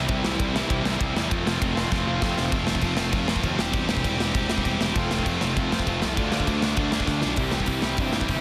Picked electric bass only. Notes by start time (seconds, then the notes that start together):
0.09 C2
0.24 C2
0.39 C2
0.70 C2
0.84 C2
1.00 C2
1.14 E2
1.31 F1
1.46 F1
1.62 F1
1.92 F1
2.07 F1
2.22 F1
2.38 F1
2.52 F1
2.68 F1
2.82 F1
2.98 F1
3.13 F1
3.28 F2
3.43 D#2
3.57 E1
3.74 E1
3.89 E1
4.05 E1
4.34 E1
4.65 E1
4.80 E1
4.96 F1
5.12 F1
5.27 F1
5.42 F1
5.57 F1
5.72 F2
5.87 F1
6.04 C2
6.18 D2
6.33 D2
6.47 D2
6.77 D2
7.07 D2
7.25 B1
7.37 C2
7.53 C2
7.67 C2
7.83 C2
7.98 G2
8.29 G1